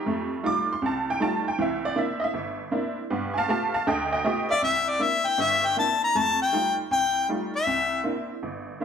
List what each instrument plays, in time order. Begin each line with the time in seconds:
Already playing: honky-tonk piano D#4 G4
0.06 honky-tonk piano F2 A3
0.43 honky-tonk piano G3 A3 D#4 F4 D6
0.73 honky-tonk piano C6
0.82 honky-tonk piano C2 C3
0.86 honky-tonk piano A5
1.10 honky-tonk piano G5
1.20 honky-tonk piano G3 A3 D#4 F4 A5
1.48 honky-tonk piano G5
1.58 honky-tonk piano C2 E3 E5
1.85 honky-tonk piano D5
1.96 honky-tonk piano A#3 C4 D4 E4 E5
2.20 honky-tonk piano D#5
2.24 honky-tonk piano E5
2.34 honky-tonk piano G1
2.71 honky-tonk piano A#3 C4 D4 E4
3.10 honky-tonk piano G2 B3
3.34 honky-tonk piano F5 G#5
3.38 honky-tonk piano A5
3.48 honky-tonk piano A3 B3 F4 G4 F5 A5
3.74 honky-tonk piano F5 A5
3.87 honky-tonk piano D2 D3 D#5 G5
4.12 honky-tonk piano D#5 G5
4.24 honky-tonk piano A3 B3 F4 G4 D#5 G5
4.51 harmonica D5, honky-tonk piano E5
4.62 honky-tonk piano C2, harmonica E5
4.89 harmonica D5
4.99 honky-tonk piano A#3 C4 D4 E4, harmonica E5
5.28 harmonica G5
5.38 honky-tonk piano G1 G2, harmonica E5
5.66 harmonica G5
5.76 honky-tonk piano A#3 C4 D4 E4, harmonica A5
6.04 harmonica A#5
6.15 honky-tonk piano F2 A3, harmonica A5
6.42 harmonica G5
6.52 honky-tonk piano G3 A3 D#4 F4
6.91 honky-tonk piano C2, harmonica G5
7.29 honky-tonk piano G3 A3 D#4 F4
7.56 harmonica E5
7.67 honky-tonk piano C2
8.04 honky-tonk piano A#3 C4 D4 E4
8.43 honky-tonk piano G1
8.80 honky-tonk piano A#3 C4 D4 E4